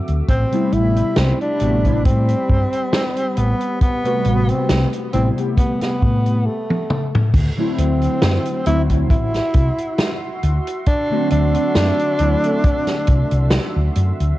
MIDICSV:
0, 0, Header, 1, 7, 480
1, 0, Start_track
1, 0, Tempo, 882353
1, 154, Time_signature, 4, 2, 24, 8
1, 7827, End_track
2, 0, Start_track
2, 0, Title_t, "Analog synth pad"
2, 0, Program_c, 0, 89
2, 0, Note_on_c, 0, 66, 82
2, 0, Note_on_c, 0, 76, 76
2, 0, Note_on_c, 0, 86, 92
2, 134, Note_off_c, 0, 66, 0
2, 134, Note_off_c, 0, 76, 0
2, 136, Note_off_c, 0, 86, 0
2, 158, Note_on_c, 0, 55, 83
2, 158, Note_on_c, 0, 83, 92
2, 3494, Note_off_c, 0, 55, 0
2, 3494, Note_off_c, 0, 83, 0
2, 3996, Note_on_c, 0, 66, 84
2, 3996, Note_on_c, 0, 84, 91
2, 3997, Note_on_c, 0, 76, 77
2, 7813, Note_off_c, 0, 66, 0
2, 7813, Note_off_c, 0, 84, 0
2, 7814, Note_off_c, 0, 76, 0
2, 7827, End_track
3, 0, Start_track
3, 0, Title_t, "Tenor saxophone"
3, 0, Program_c, 1, 66
3, 159, Note_on_c, 1, 60, 110
3, 399, Note_on_c, 1, 64, 103
3, 407, Note_off_c, 1, 60, 0
3, 637, Note_on_c, 1, 60, 102
3, 646, Note_off_c, 1, 64, 0
3, 766, Note_off_c, 1, 60, 0
3, 770, Note_on_c, 1, 62, 108
3, 1095, Note_off_c, 1, 62, 0
3, 1118, Note_on_c, 1, 60, 103
3, 1837, Note_on_c, 1, 59, 94
3, 1845, Note_off_c, 1, 60, 0
3, 2073, Note_off_c, 1, 59, 0
3, 2076, Note_on_c, 1, 59, 103
3, 2445, Note_on_c, 1, 60, 89
3, 2453, Note_off_c, 1, 59, 0
3, 2655, Note_off_c, 1, 60, 0
3, 2793, Note_on_c, 1, 60, 90
3, 2880, Note_off_c, 1, 60, 0
3, 3033, Note_on_c, 1, 59, 91
3, 3155, Note_off_c, 1, 59, 0
3, 3167, Note_on_c, 1, 59, 97
3, 3514, Note_on_c, 1, 57, 82
3, 3522, Note_off_c, 1, 59, 0
3, 3885, Note_off_c, 1, 57, 0
3, 4235, Note_on_c, 1, 60, 99
3, 4693, Note_off_c, 1, 60, 0
3, 4716, Note_on_c, 1, 64, 106
3, 4803, Note_off_c, 1, 64, 0
3, 4955, Note_on_c, 1, 64, 103
3, 5653, Note_off_c, 1, 64, 0
3, 5914, Note_on_c, 1, 62, 119
3, 6137, Note_off_c, 1, 62, 0
3, 6156, Note_on_c, 1, 62, 121
3, 7573, Note_off_c, 1, 62, 0
3, 7827, End_track
4, 0, Start_track
4, 0, Title_t, "Synth keys"
4, 0, Program_c, 2, 88
4, 0, Note_on_c, 2, 50, 73
4, 0, Note_on_c, 2, 54, 69
4, 0, Note_on_c, 2, 57, 66
4, 0, Note_on_c, 2, 60, 69
4, 0, Note_on_c, 2, 69, 85
4, 137, Note_off_c, 2, 50, 0
4, 140, Note_off_c, 2, 54, 0
4, 142, Note_off_c, 2, 57, 0
4, 144, Note_off_c, 2, 60, 0
4, 146, Note_off_c, 2, 69, 0
4, 278, Note_on_c, 2, 48, 94
4, 282, Note_on_c, 2, 55, 86
4, 286, Note_on_c, 2, 57, 88
4, 290, Note_on_c, 2, 59, 86
4, 294, Note_on_c, 2, 64, 104
4, 845, Note_off_c, 2, 48, 0
4, 847, Note_off_c, 2, 55, 0
4, 849, Note_off_c, 2, 57, 0
4, 851, Note_off_c, 2, 59, 0
4, 853, Note_off_c, 2, 64, 0
4, 875, Note_on_c, 2, 48, 90
4, 876, Note_on_c, 2, 55, 82
4, 877, Note_on_c, 2, 57, 81
4, 880, Note_on_c, 2, 59, 84
4, 883, Note_on_c, 2, 66, 98
4, 974, Note_off_c, 2, 48, 0
4, 974, Note_off_c, 2, 55, 0
4, 975, Note_off_c, 2, 57, 0
4, 977, Note_off_c, 2, 59, 0
4, 978, Note_off_c, 2, 66, 0
4, 1003, Note_on_c, 2, 48, 91
4, 1005, Note_on_c, 2, 55, 80
4, 1006, Note_on_c, 2, 57, 83
4, 1008, Note_on_c, 2, 59, 82
4, 1011, Note_on_c, 2, 64, 102
4, 1124, Note_off_c, 2, 48, 0
4, 1125, Note_off_c, 2, 55, 0
4, 1126, Note_off_c, 2, 57, 0
4, 1127, Note_off_c, 2, 59, 0
4, 1128, Note_off_c, 2, 64, 0
4, 2195, Note_on_c, 2, 48, 99
4, 2199, Note_on_c, 2, 55, 90
4, 2203, Note_on_c, 2, 57, 88
4, 2207, Note_on_c, 2, 71, 88
4, 2212, Note_on_c, 2, 66, 111
4, 2763, Note_off_c, 2, 48, 0
4, 2765, Note_off_c, 2, 55, 0
4, 2767, Note_off_c, 2, 57, 0
4, 2769, Note_off_c, 2, 71, 0
4, 2772, Note_off_c, 2, 66, 0
4, 2789, Note_on_c, 2, 48, 93
4, 2791, Note_on_c, 2, 55, 82
4, 2793, Note_on_c, 2, 57, 82
4, 2795, Note_on_c, 2, 59, 84
4, 2797, Note_on_c, 2, 64, 100
4, 2891, Note_off_c, 2, 48, 0
4, 2892, Note_off_c, 2, 55, 0
4, 2893, Note_off_c, 2, 57, 0
4, 2894, Note_off_c, 2, 59, 0
4, 2895, Note_off_c, 2, 64, 0
4, 2913, Note_on_c, 2, 48, 78
4, 2919, Note_on_c, 2, 55, 70
4, 2922, Note_on_c, 2, 57, 68
4, 2926, Note_on_c, 2, 59, 69
4, 2931, Note_on_c, 2, 67, 85
4, 3509, Note_off_c, 2, 48, 0
4, 3511, Note_off_c, 2, 55, 0
4, 3513, Note_off_c, 2, 57, 0
4, 3515, Note_off_c, 2, 59, 0
4, 3517, Note_off_c, 2, 67, 0
4, 4116, Note_on_c, 2, 50, 96
4, 4121, Note_on_c, 2, 54, 85
4, 4125, Note_on_c, 2, 57, 87
4, 4128, Note_on_c, 2, 60, 88
4, 4133, Note_on_c, 2, 64, 106
4, 4684, Note_off_c, 2, 50, 0
4, 4686, Note_off_c, 2, 54, 0
4, 4688, Note_off_c, 2, 57, 0
4, 4690, Note_off_c, 2, 60, 0
4, 4692, Note_off_c, 2, 64, 0
4, 4708, Note_on_c, 2, 50, 95
4, 4711, Note_on_c, 2, 54, 84
4, 4713, Note_on_c, 2, 57, 83
4, 4714, Note_on_c, 2, 60, 82
4, 4718, Note_on_c, 2, 66, 100
4, 4810, Note_off_c, 2, 50, 0
4, 4812, Note_off_c, 2, 54, 0
4, 4813, Note_off_c, 2, 57, 0
4, 4814, Note_off_c, 2, 60, 0
4, 4815, Note_off_c, 2, 66, 0
4, 4841, Note_on_c, 2, 50, 90
4, 4843, Note_on_c, 2, 54, 82
4, 4845, Note_on_c, 2, 57, 80
4, 4848, Note_on_c, 2, 60, 82
4, 4849, Note_on_c, 2, 64, 104
4, 4963, Note_off_c, 2, 50, 0
4, 4965, Note_off_c, 2, 54, 0
4, 4966, Note_off_c, 2, 57, 0
4, 4967, Note_off_c, 2, 60, 0
4, 4968, Note_off_c, 2, 64, 0
4, 6037, Note_on_c, 2, 50, 102
4, 6041, Note_on_c, 2, 54, 91
4, 6044, Note_on_c, 2, 57, 92
4, 6050, Note_on_c, 2, 60, 90
4, 6053, Note_on_c, 2, 66, 111
4, 6604, Note_off_c, 2, 50, 0
4, 6606, Note_off_c, 2, 54, 0
4, 6608, Note_off_c, 2, 57, 0
4, 6611, Note_off_c, 2, 60, 0
4, 6612, Note_off_c, 2, 66, 0
4, 6632, Note_on_c, 2, 50, 91
4, 6633, Note_on_c, 2, 54, 86
4, 6635, Note_on_c, 2, 57, 88
4, 6638, Note_on_c, 2, 60, 85
4, 6639, Note_on_c, 2, 64, 102
4, 6732, Note_off_c, 2, 50, 0
4, 6733, Note_off_c, 2, 54, 0
4, 6734, Note_off_c, 2, 57, 0
4, 6735, Note_off_c, 2, 60, 0
4, 6736, Note_off_c, 2, 64, 0
4, 6760, Note_on_c, 2, 50, 76
4, 6763, Note_on_c, 2, 54, 73
4, 6768, Note_on_c, 2, 57, 70
4, 6771, Note_on_c, 2, 60, 71
4, 6776, Note_on_c, 2, 69, 87
4, 7819, Note_off_c, 2, 50, 0
4, 7820, Note_off_c, 2, 54, 0
4, 7823, Note_off_c, 2, 57, 0
4, 7825, Note_off_c, 2, 60, 0
4, 7827, Note_off_c, 2, 69, 0
4, 7827, End_track
5, 0, Start_track
5, 0, Title_t, "Fretless electric bass"
5, 0, Program_c, 3, 35
5, 45, Note_on_c, 3, 38, 83
5, 111, Note_off_c, 3, 38, 0
5, 156, Note_on_c, 3, 33, 99
5, 234, Note_off_c, 3, 33, 0
5, 394, Note_on_c, 3, 33, 96
5, 547, Note_off_c, 3, 33, 0
5, 635, Note_on_c, 3, 36, 102
5, 713, Note_off_c, 3, 36, 0
5, 875, Note_on_c, 3, 33, 92
5, 1119, Note_on_c, 3, 45, 82
5, 1127, Note_off_c, 3, 33, 0
5, 1269, Note_off_c, 3, 45, 0
5, 1357, Note_on_c, 3, 43, 102
5, 1434, Note_off_c, 3, 43, 0
5, 1835, Note_on_c, 3, 33, 97
5, 1913, Note_off_c, 3, 33, 0
5, 2313, Note_on_c, 3, 33, 98
5, 2442, Note_off_c, 3, 33, 0
5, 2555, Note_on_c, 3, 36, 102
5, 2633, Note_off_c, 3, 36, 0
5, 2795, Note_on_c, 3, 33, 93
5, 2873, Note_off_c, 3, 33, 0
5, 3278, Note_on_c, 3, 45, 80
5, 3516, Note_off_c, 3, 45, 0
5, 3992, Note_on_c, 3, 38, 101
5, 4072, Note_off_c, 3, 38, 0
5, 4233, Note_on_c, 3, 38, 98
5, 4386, Note_off_c, 3, 38, 0
5, 4473, Note_on_c, 3, 42, 105
5, 4552, Note_off_c, 3, 42, 0
5, 4712, Note_on_c, 3, 38, 93
5, 4952, Note_off_c, 3, 38, 0
5, 4952, Note_on_c, 3, 33, 84
5, 5106, Note_off_c, 3, 33, 0
5, 5193, Note_on_c, 3, 36, 106
5, 5272, Note_off_c, 3, 36, 0
5, 5674, Note_on_c, 3, 38, 98
5, 5753, Note_off_c, 3, 38, 0
5, 6155, Note_on_c, 3, 38, 98
5, 6281, Note_off_c, 3, 38, 0
5, 6393, Note_on_c, 3, 42, 101
5, 6472, Note_off_c, 3, 42, 0
5, 6632, Note_on_c, 3, 38, 97
5, 6712, Note_off_c, 3, 38, 0
5, 7117, Note_on_c, 3, 36, 88
5, 7194, Note_off_c, 3, 36, 0
5, 7245, Note_on_c, 3, 36, 104
5, 7381, Note_off_c, 3, 36, 0
5, 7485, Note_on_c, 3, 38, 84
5, 7551, Note_off_c, 3, 38, 0
5, 7595, Note_on_c, 3, 42, 94
5, 7673, Note_off_c, 3, 42, 0
5, 7725, Note_on_c, 3, 38, 86
5, 7791, Note_off_c, 3, 38, 0
5, 7827, End_track
6, 0, Start_track
6, 0, Title_t, "Muted fretless electric bass strokes"
6, 2446, Note_on_c, 9, 29, 43
6, 2500, Note_off_c, 9, 29, 0
6, 7827, End_track
7, 0, Start_track
7, 0, Title_t, "Drums"
7, 42, Note_on_c, 9, 42, 51
7, 96, Note_off_c, 9, 42, 0
7, 154, Note_on_c, 9, 42, 95
7, 155, Note_on_c, 9, 36, 111
7, 209, Note_off_c, 9, 42, 0
7, 210, Note_off_c, 9, 36, 0
7, 285, Note_on_c, 9, 42, 54
7, 339, Note_off_c, 9, 42, 0
7, 394, Note_on_c, 9, 42, 69
7, 448, Note_off_c, 9, 42, 0
7, 525, Note_on_c, 9, 42, 56
7, 579, Note_off_c, 9, 42, 0
7, 631, Note_on_c, 9, 42, 100
7, 632, Note_on_c, 9, 38, 120
7, 685, Note_off_c, 9, 42, 0
7, 687, Note_off_c, 9, 38, 0
7, 766, Note_on_c, 9, 42, 54
7, 821, Note_off_c, 9, 42, 0
7, 868, Note_on_c, 9, 42, 74
7, 922, Note_off_c, 9, 42, 0
7, 1004, Note_on_c, 9, 36, 58
7, 1005, Note_on_c, 9, 42, 51
7, 1059, Note_off_c, 9, 36, 0
7, 1060, Note_off_c, 9, 42, 0
7, 1116, Note_on_c, 9, 42, 93
7, 1118, Note_on_c, 9, 36, 116
7, 1170, Note_off_c, 9, 42, 0
7, 1172, Note_off_c, 9, 36, 0
7, 1243, Note_on_c, 9, 42, 54
7, 1298, Note_off_c, 9, 42, 0
7, 1357, Note_on_c, 9, 36, 93
7, 1412, Note_off_c, 9, 36, 0
7, 1483, Note_on_c, 9, 42, 56
7, 1537, Note_off_c, 9, 42, 0
7, 1593, Note_on_c, 9, 38, 122
7, 1598, Note_on_c, 9, 42, 98
7, 1647, Note_off_c, 9, 38, 0
7, 1652, Note_off_c, 9, 42, 0
7, 1722, Note_on_c, 9, 42, 62
7, 1776, Note_off_c, 9, 42, 0
7, 1831, Note_on_c, 9, 42, 82
7, 1885, Note_off_c, 9, 42, 0
7, 1961, Note_on_c, 9, 42, 57
7, 2015, Note_off_c, 9, 42, 0
7, 2072, Note_on_c, 9, 42, 93
7, 2074, Note_on_c, 9, 36, 109
7, 2127, Note_off_c, 9, 42, 0
7, 2128, Note_off_c, 9, 36, 0
7, 2203, Note_on_c, 9, 42, 55
7, 2258, Note_off_c, 9, 42, 0
7, 2310, Note_on_c, 9, 42, 72
7, 2364, Note_off_c, 9, 42, 0
7, 2441, Note_on_c, 9, 42, 56
7, 2495, Note_off_c, 9, 42, 0
7, 2552, Note_on_c, 9, 38, 113
7, 2552, Note_on_c, 9, 42, 99
7, 2607, Note_off_c, 9, 38, 0
7, 2607, Note_off_c, 9, 42, 0
7, 2681, Note_on_c, 9, 42, 59
7, 2736, Note_off_c, 9, 42, 0
7, 2791, Note_on_c, 9, 42, 73
7, 2845, Note_off_c, 9, 42, 0
7, 2926, Note_on_c, 9, 42, 53
7, 2980, Note_off_c, 9, 42, 0
7, 3033, Note_on_c, 9, 36, 108
7, 3033, Note_on_c, 9, 42, 103
7, 3087, Note_off_c, 9, 36, 0
7, 3087, Note_off_c, 9, 42, 0
7, 3162, Note_on_c, 9, 42, 57
7, 3166, Note_on_c, 9, 38, 32
7, 3217, Note_off_c, 9, 42, 0
7, 3220, Note_off_c, 9, 38, 0
7, 3277, Note_on_c, 9, 36, 94
7, 3332, Note_off_c, 9, 36, 0
7, 3404, Note_on_c, 9, 42, 54
7, 3459, Note_off_c, 9, 42, 0
7, 3646, Note_on_c, 9, 48, 48
7, 3700, Note_off_c, 9, 48, 0
7, 3754, Note_on_c, 9, 47, 76
7, 3809, Note_off_c, 9, 47, 0
7, 3889, Note_on_c, 9, 45, 83
7, 3943, Note_off_c, 9, 45, 0
7, 3992, Note_on_c, 9, 36, 116
7, 3992, Note_on_c, 9, 49, 107
7, 3995, Note_on_c, 9, 42, 95
7, 4047, Note_off_c, 9, 36, 0
7, 4047, Note_off_c, 9, 49, 0
7, 4049, Note_off_c, 9, 42, 0
7, 4234, Note_on_c, 9, 42, 93
7, 4288, Note_off_c, 9, 42, 0
7, 4360, Note_on_c, 9, 42, 67
7, 4415, Note_off_c, 9, 42, 0
7, 4471, Note_on_c, 9, 38, 127
7, 4473, Note_on_c, 9, 42, 94
7, 4525, Note_off_c, 9, 38, 0
7, 4528, Note_off_c, 9, 42, 0
7, 4599, Note_on_c, 9, 42, 61
7, 4653, Note_off_c, 9, 42, 0
7, 4710, Note_on_c, 9, 42, 88
7, 4764, Note_off_c, 9, 42, 0
7, 4839, Note_on_c, 9, 42, 71
7, 4841, Note_on_c, 9, 36, 62
7, 4894, Note_off_c, 9, 42, 0
7, 4895, Note_off_c, 9, 36, 0
7, 4951, Note_on_c, 9, 36, 124
7, 4954, Note_on_c, 9, 42, 84
7, 5006, Note_off_c, 9, 36, 0
7, 5009, Note_off_c, 9, 42, 0
7, 5082, Note_on_c, 9, 42, 58
7, 5084, Note_on_c, 9, 38, 35
7, 5136, Note_off_c, 9, 42, 0
7, 5138, Note_off_c, 9, 38, 0
7, 5188, Note_on_c, 9, 42, 86
7, 5193, Note_on_c, 9, 36, 110
7, 5243, Note_off_c, 9, 42, 0
7, 5248, Note_off_c, 9, 36, 0
7, 5322, Note_on_c, 9, 42, 68
7, 5377, Note_off_c, 9, 42, 0
7, 5429, Note_on_c, 9, 42, 95
7, 5432, Note_on_c, 9, 38, 109
7, 5483, Note_off_c, 9, 42, 0
7, 5486, Note_off_c, 9, 38, 0
7, 5672, Note_on_c, 9, 42, 87
7, 5727, Note_off_c, 9, 42, 0
7, 5803, Note_on_c, 9, 42, 76
7, 5858, Note_off_c, 9, 42, 0
7, 5908, Note_on_c, 9, 42, 82
7, 5912, Note_on_c, 9, 36, 117
7, 5963, Note_off_c, 9, 42, 0
7, 5966, Note_off_c, 9, 36, 0
7, 6149, Note_on_c, 9, 42, 88
7, 6204, Note_off_c, 9, 42, 0
7, 6280, Note_on_c, 9, 42, 75
7, 6335, Note_off_c, 9, 42, 0
7, 6393, Note_on_c, 9, 38, 116
7, 6396, Note_on_c, 9, 42, 86
7, 6447, Note_off_c, 9, 38, 0
7, 6450, Note_off_c, 9, 42, 0
7, 6524, Note_on_c, 9, 42, 55
7, 6578, Note_off_c, 9, 42, 0
7, 6629, Note_on_c, 9, 42, 85
7, 6684, Note_off_c, 9, 42, 0
7, 6765, Note_on_c, 9, 42, 66
7, 6819, Note_off_c, 9, 42, 0
7, 6874, Note_on_c, 9, 42, 93
7, 6877, Note_on_c, 9, 36, 121
7, 6929, Note_off_c, 9, 42, 0
7, 6931, Note_off_c, 9, 36, 0
7, 7001, Note_on_c, 9, 38, 35
7, 7001, Note_on_c, 9, 42, 58
7, 7055, Note_off_c, 9, 42, 0
7, 7056, Note_off_c, 9, 38, 0
7, 7110, Note_on_c, 9, 42, 94
7, 7117, Note_on_c, 9, 36, 102
7, 7165, Note_off_c, 9, 42, 0
7, 7171, Note_off_c, 9, 36, 0
7, 7241, Note_on_c, 9, 42, 68
7, 7296, Note_off_c, 9, 42, 0
7, 7347, Note_on_c, 9, 38, 127
7, 7354, Note_on_c, 9, 42, 86
7, 7401, Note_off_c, 9, 38, 0
7, 7409, Note_off_c, 9, 42, 0
7, 7592, Note_on_c, 9, 42, 89
7, 7646, Note_off_c, 9, 42, 0
7, 7726, Note_on_c, 9, 42, 65
7, 7780, Note_off_c, 9, 42, 0
7, 7827, End_track
0, 0, End_of_file